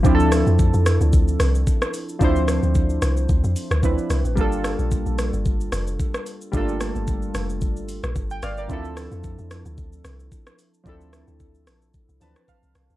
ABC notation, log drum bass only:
X:1
M:4/4
L:1/16
Q:"Swing 16ths" 1/4=111
K:Dphr
V:1 name="Log drum bass" clef=bass
D,,3 F,,2 F,,2 D,,3 C,,2 z4 | D,,3 D,,3 C,,2 D,, F,, z D,, D,, z C,, A,,, | G,,,3 B,,,2 B,,,2 G,,,3 F,,,2 z4 | G,,,3 G,,,3 F,,,2 G,,,3 B,,, G,,,2 G,,,2 |
D,,3 F,,2 F,,2 D,,3 C,,2 z4 | D,,3 D,,3 B,,,2 z C,, D,, z2 C,, C,, D,, |]